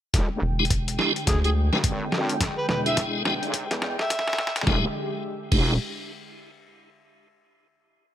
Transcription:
0.14 wobble bass E1, analog synth pad D3 G#3 G5, kick, snare, closed hi-hat
0.42 analog synth bass E1
0.59 tonewheel organ G#3 D4 E4 G4
0.65 closed hi-hat
0.70 kick, closed hi-hat
0.88 closed hi-hat
0.99 tonewheel organ G#3 D4 E4 G4, snare
1.16 closed hi-hat
1.27 analog synth bass D2, harmonica G#4, kick, snare, closed hi-hat
1.44 tonewheel organ G#3 D4 E4 G4, harmonica G#4, closed hi-hat
1.73 wobble bass E1, tonewheel organ G#3 D4 E4 B4, snare
1.84 wobble bass G#1, kick, closed hi-hat
2.12 snare
2.29 closed hi-hat
2.41 kick, snare, closed hi-hat
2.58 harmonica B4
2.69 analog synth bass E1, harmonica B4, snare
2.86 tonewheel organ G#3 D4 E4 G#4, harmonica E5, closed hi-hat
2.97 kick, snare, closed hi-hat
3.25 analog synth bass E1, tonewheel organ G#3 D4 E4 G4, snare
3.43 wobble bass B1, closed hi-hat
3.54 kick, closed hi-hat
3.71 analog synth bass E2, snare, closed hi-hat
3.82 snare
3.99 harmonica E5, snare
4.10 kick, snare, closed hi-hat
4.19 snare
4.28 snare
4.33 snare
4.39 snare
4.47 snare
4.56 snare, closed hi-hat
4.61 snare
4.67 wobble bass E1, analog synth pad D3 G#3 G4, tonewheel organ G#3 D4 E4 G4, kick, snare
5.52 wobble bass E1, tonewheel organ G#3 D4 E4 G4, kick, crash

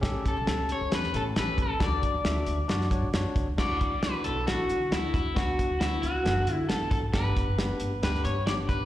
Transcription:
0.01 upright bass A1, tine electric piano C#4 G4 A4, kick, snare, closed hi-hat
0.26 clean electric guitar A4, kick, closed hi-hat
0.37 upright bass B1
0.46 upright bass C#2, tine electric piano C#4 G4 A4, snare, closed hi-hat
0.69 clean electric guitar C#5, closed hi-hat
0.81 upright bass C#2
0.90 upright bass E2, tine electric piano C#4 G4 B4, snare, closed hi-hat
0.95 clean electric guitar B4
1.03 snare
1.13 upright bass A2, tine electric piano C#4 G4 A4, clean electric guitar A4, closed hi-hat
1.35 upright bass A1, tine electric piano B3 G4 A4, clean electric guitar B4, snare, closed hi-hat
1.40 tine electric piano C#4
1.58 upright bass D#2, kick, closed hi-hat
1.62 clean electric guitar A4
1.79 upright bass D2, tine electric piano D4 F#4 D5, kick, snare, closed hi-hat
1.84 clean electric guitar D5
2.03 kick, closed hi-hat
2.14 upright bass D2
2.24 upright bass D2, tine electric piano D4 F4 E5, snare, closed hi-hat
2.30 tine electric piano F#4
2.46 upright bass D2, closed hi-hat
2.68 upright bass F#2, tine electric piano D4 F#4 D5, snare, closed hi-hat
2.81 snare
2.91 tine electric piano D4 F#4 C#5, kick, closed hi-hat
3.02 upright bass A2
3.13 upright bass F#2, tine electric piano D4 F#4 C#5, snare, closed hi-hat
3.36 upright bass D2, kick, closed hi-hat
3.47 upright bass C#2
3.57 upright bass D2, tine electric piano D4 E4 F#4, clean electric guitar D5, kick, snare, crash
3.81 upright bass C#2, kick, closed hi-hat
4.02 tine electric piano D4 E4 F#4, clean electric guitar B4, snare, closed hi-hat
4.24 upright bass B1, clean electric guitar A4, closed hi-hat
4.46 upright bass A1, tine electric piano D4 E4 F#4, clean electric guitar F#4, snare, closed hi-hat
4.69 upright bass D3, closed hi-hat
4.91 upright bass D2, tine electric piano D4 E4 F#4, clean electric guitar E4, snare, closed hi-hat
5.14 upright bass D#2, clean electric guitar E4, kick, closed hi-hat
5.34 upright bass D2, tine electric piano B3 D4 F#4, clean electric guitar F#4, kick, snare, closed hi-hat
5.59 kick, closed hi-hat
5.70 upright bass D2
5.79 tine electric piano B3 D4 E4, clean electric guitar E4, snare, closed hi-hat
6.02 upright bass C#2, clean electric guitar F#4, closed hi-hat
6.23 upright bass F#1, tine electric piano B3 D4 A4, snare, closed hi-hat
6.47 upright bass D3, closed hi-hat
6.54 clean electric guitar E4
6.69 upright bass A1, tine electric piano B3 D4 A4, clean electric guitar A4, snare, closed hi-hat
6.91 upright bass G#1, clean electric guitar A4, kick, closed hi-hat
7.13 upright bass G1, tine electric piano B3 D4 G4, clean electric guitar B4, kick, snare, closed hi-hat
7.37 upright bass F#1, kick, closed hi-hat
7.57 tine electric piano B3 D4 G4, snare, closed hi-hat
7.80 upright bass G1, closed hi-hat
8.02 upright bass D2, tine electric piano B3 D4 G4, clean electric guitar B4, snare, closed hi-hat
8.15 snare
8.25 upright bass G2, clean electric guitar C#5, closed hi-hat
8.46 upright bass G1, tine electric piano B3 D4 G4, clean electric guitar D5, snare, closed hi-hat
8.69 upright bass A#1, clean electric guitar B4, kick, closed hi-hat

